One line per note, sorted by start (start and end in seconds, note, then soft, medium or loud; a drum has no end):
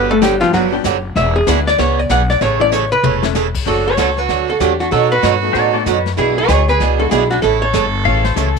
0.00 0.41 G1 medium
0.00 0.11 D3 medium
0.00 0.11 F#3 medium
0.00 0.11 B3 medium
0.00 0.12 B3 medium
0.00 0.12 D4 medium
0.00 0.12 G4 medium
0.00 0.10 B4 loud
0.11 0.22 A3 medium
0.11 0.21 A4 medium
0.22 0.33 D3 medium
0.22 0.34 F#3 medium
0.22 0.41 G3 medium
0.22 0.34 B3 medium
0.22 0.34 D4 medium
0.22 0.40 G4 medium
0.22 0.34 G4 medium
0.22 snare medium
0.22 hi-hat pedal medium
0.41 0.53 F3 medium
0.41 0.52 G3 medium
0.41 0.52 B3 medium
0.41 0.52 D4 medium
0.41 0.52 F4 medium
0.41 0.52 F#4 medium
0.41 0.52 G4 medium
0.41 snare soft
0.53 0.80 G1 medium
0.53 0.74 D3 medium
0.53 0.66 F#3 medium
0.53 0.74 F#3 medium
0.53 0.75 B3 medium
0.53 0.75 D4 medium
0.53 0.65 F#4 medium
0.53 0.75 G4 medium
0.53 brush sweep medium
0.53 snare soft
0.72 0.83 G3 medium
0.72 0.83 B3 medium
0.72 0.83 D4 medium
0.72 0.83 F#4 medium
0.72 0.84 G4 medium
0.84 1.11 F#1 medium
0.84 0.96 D3 medium
0.84 0.96 F#3 medium
0.84 0.96 B3 medium
0.84 0.97 D4 medium
0.84 0.97 G4 medium
0.84 snare medium
0.84 hi-hat pedal medium
1.16 1.41 E1 medium
1.16 1.37 E3 medium
1.16 1.37 B3 medium
1.16 1.37 D4 medium
1.16 1.37 G#4 medium
1.16 1.35 E5 medium
1.16 brush sweep medium
1.16 snare medium
1.36 1.48 G#4 medium
1.47 1.74 D2 medium
1.47 1.59 E3 medium
1.47 1.65 G#3 medium
1.47 1.65 B3 medium
1.47 1.59 B3 medium
1.47 1.65 D4 medium
1.47 1.59 D4 medium
1.47 1.65 E4 medium
1.47 1.65 G#4 medium
1.47 1.59 G#4 loud
1.47 1.67 B4 medium
1.47 snare medium
1.47 hi-hat pedal medium
1.67 1.78 D5 loud
1.67 snare soft
1.78 2.05 C#2 medium
1.78 1.99 E3 medium
1.78 1.99 B3 medium
1.78 2.00 D4 medium
1.78 2.00 G#4 medium
1.78 1.99 C#5 medium
1.78 brush sweep medium
1.78 snare medium
1.99 2.10 D5 loud
2.09 2.36 B1 medium
2.09 2.21 E3 medium
2.09 2.21 B3 medium
2.09 2.21 D4 medium
2.09 2.22 G#4 medium
2.09 2.30 F#5 loud
2.09 snare medium
2.09 hi-hat pedal soft
2.30 2.41 D5 medium
2.30 snare soft
2.41 2.91 A1 medium
2.41 2.62 C#3 medium
2.41 2.62 E3 medium
2.41 2.62 A3 medium
2.41 2.62 C#4 medium
2.41 2.62 A4 medium
2.41 2.61 C#5 medium
2.41 brush sweep medium
2.41 snare medium
2.60 2.71 E3 medium
2.60 2.71 A3 medium
2.60 2.71 C#4 medium
2.60 2.71 E4 medium
2.60 2.71 A4 loud
2.60 2.72 D5 loud
2.72 2.83 C#3 medium
2.72 2.84 E3 medium
2.72 2.84 A3 medium
2.72 2.84 C#4 medium
2.72 2.84 A4 medium
2.72 2.92 C#5 medium
2.72 hi-hat pedal medium
2.92 3.32 B4 loud
2.92 mid tom medium
3.03 3.54 E1 medium
3.03 3.24 C#3 medium
3.03 3.25 E3 medium
3.03 3.25 A3 medium
3.03 3.25 C#4 medium
3.03 3.25 A4 medium
3.03 mid tom medium
3.22 3.33 E3 medium
3.22 3.33 A3 medium
3.22 3.34 C#4 medium
3.22 3.34 E4 medium
3.22 3.34 A4 medium
3.22 snare medium
3.35 3.46 C#3 medium
3.35 3.46 E3 medium
3.35 3.47 A3 medium
3.35 3.47 C#4 medium
3.35 3.47 A4 medium
3.35 snare medium
3.35 hi-hat pedal medium
3.55 kick medium
3.55 crash medium
3.65 3.97 F#1 medium
3.65 3.87 D3 medium
3.65 4.53 F#3 medium
3.65 3.87 F#3 medium
3.65 4.53 A3 medium
3.65 3.87 A3 medium
3.65 4.53 D4 medium
3.65 3.88 D4 medium
3.65 4.53 F#4 medium
3.65 3.85 F#4 medium
3.65 3.88 F#4 medium
3.65 4.53 A4 medium
3.65 3.88 A4 medium
3.65 brush sweep medium
3.65 snare soft
3.87 3.97 A4 medium
3.87 3.98 C#5 medium
3.97 4.28 C#2 medium
3.97 4.09 D3 medium
3.97 4.09 F#3 medium
3.97 4.09 A3 medium
3.97 4.09 D4 medium
3.97 4.09 F#4 medium
3.97 4.20 A4 medium
3.97 4.18 C#5 medium
3.97 snare medium
3.97 hi-hat pedal medium
4.17 4.48 F#4 medium
4.17 4.50 B4 medium
4.17 snare soft
4.29 4.59 D2 medium
4.29 4.50 D3 medium
4.29 4.50 F#3 medium
4.29 4.50 A3 medium
4.29 4.50 D4 medium
4.29 4.50 F#4 medium
4.29 brush sweep soft
4.29 snare medium
4.49 4.62 F#4 medium
4.49 4.61 A4 medium
4.60 4.91 E2 medium
4.60 4.72 D3 medium
4.60 4.72 F#3 medium
4.60 4.72 A3 medium
4.60 4.80 D4 medium
4.60 4.72 D4 medium
4.60 4.72 F#4 medium
4.60 4.80 G4 medium
4.60 snare medium
4.60 hi-hat pedal medium
4.80 4.91 D4 medium
4.80 4.91 F#4 medium
4.80 snare soft
4.91 5.12 B2 medium
4.91 5.22 B2 medium
4.91 5.12 F#3 medium
4.91 5.13 A3 medium
4.91 5.13 D#4 medium
4.91 5.10 F#4 medium
4.91 5.13 F#4 medium
4.91 5.12 A4 medium
4.91 brush sweep soft
4.91 snare soft
5.12 6.02 F#4 medium
5.12 6.02 B4 medium
5.23 5.53 G2 loud
5.23 5.34 B2 medium
5.23 5.34 F#3 medium
5.23 5.34 A3 medium
5.23 5.35 D#4 medium
5.23 5.35 F#4 medium
5.23 snare medium
5.23 hi-hat pedal medium
5.42 5.72 A3 medium
5.42 5.72 B3 medium
5.42 5.72 D#4 medium
5.42 5.72 F#4 medium
5.42 5.72 A4 medium
5.53 5.85 A2 medium
5.53 5.75 B2 medium
5.53 5.75 F#3 medium
5.53 5.76 A3 medium
5.53 5.76 D#4 medium
5.53 5.76 F#4 medium
5.53 5.72 A4 medium
5.53 5.73 D5 medium
5.53 brush sweep medium
5.53 snare soft
5.73 5.84 A3 medium
5.73 5.84 B3 medium
5.73 5.85 D#4 medium
5.73 5.85 F#4 medium
5.73 5.84 A4 medium
5.73 5.85 A4 medium
5.73 5.85 D5 medium
5.86 6.16 F#2 medium
5.86 5.97 B2 medium
5.86 5.98 F#3 medium
5.86 5.98 A3 medium
5.86 5.98 D#4 medium
5.86 5.98 F#4 medium
5.86 6.11 B4 medium
5.86 snare medium
5.86 hi-hat pedal medium
6.06 snare soft
6.17 6.48 B1 medium
6.17 6.38 B2 medium
6.17 6.38 E3 medium
6.17 6.38 B3 medium
6.17 6.38 D4 medium
6.17 6.36 E4 medium
6.17 6.38 G#4 medium
6.17 brush sweep soft
6.17 snare soft
6.37 6.66 G#4 medium
6.37 6.69 C#5 medium
6.48 6.79 D2 loud
6.48 6.60 B2 medium
6.48 6.60 E3 medium
6.48 6.60 B3 medium
6.48 6.60 D4 medium
6.48 6.60 G#4 medium
6.48 snare medium
6.48 hi-hat pedal medium
6.68 6.98 G#4 medium
6.68 7.01 B4 medium
6.68 snare soft
6.80 7.10 C#2 medium
6.80 7.01 B2 medium
6.80 7.01 E3 medium
6.80 7.01 B3 medium
6.80 7.01 D4 medium
6.80 7.01 G#4 medium
6.80 brush sweep medium
6.80 snare soft
6.99 7.40 G#3 medium
6.99 7.40 B3 medium
6.99 7.40 D4 medium
6.99 7.40 E4 medium
6.99 7.13 F#4 medium
6.99 7.40 G#4 medium
6.99 7.05 A4 medium
7.11 7.42 B1 loud
7.11 7.22 B2 medium
7.11 7.23 E3 medium
7.11 7.23 B3 medium
7.11 7.23 D4 medium
7.11 7.31 E4 medium
7.11 7.30 G#4 medium
7.11 7.23 G#4 medium
7.11 snare medium
7.11 hi-hat pedal medium
7.31 7.42 D4 medium
7.31 7.42 F#4 medium
7.31 snare soft
7.42 7.73 A1 medium
7.42 7.63 C#3 medium
7.42 7.63 E3 medium
7.42 7.64 A3 medium
7.42 7.64 C#4 medium
7.42 7.61 E4 medium
7.42 7.61 A4 medium
7.42 7.64 A4 medium
7.42 brush sweep medium
7.42 snare medium
7.62 8.52 A4 medium
7.62 8.52 C#5 loud
7.73 8.04 G1 loud
7.73 7.85 C#3 medium
7.73 7.85 E3 medium
7.73 7.85 A3 medium
7.73 7.86 C#4 medium
7.73 7.85 A4 medium
7.73 snare medium
7.73 hi-hat pedal medium
8.04 8.36 A1 medium
8.04 8.26 C#3 medium
8.04 8.23 E3 medium
8.04 8.26 E3 medium
8.04 8.23 A3 soft
8.04 8.26 A3 medium
8.04 8.23 C#4 soft
8.04 8.26 C#4 medium
8.04 8.23 E4 medium
8.04 8.26 A4 medium
8.04 8.23 A4 medium
8.04 8.24 F5 medium
8.25 8.36 C5 medium
8.25 snare medium
8.36 8.59 C#2 medium
8.36 8.48 C#3 medium
8.36 8.54 E3 medium
8.36 8.48 E3 medium
8.36 8.54 A3 medium
8.36 8.48 A3 medium
8.36 8.54 C#4 medium
8.36 8.48 C#4 medium
8.36 8.54 E4 medium
8.36 8.55 A4 medium
8.36 8.54 A4 medium
8.36 8.48 A4 medium
8.36 snare medium
8.36 hi-hat pedal medium
8.56 kick medium
8.56 crash medium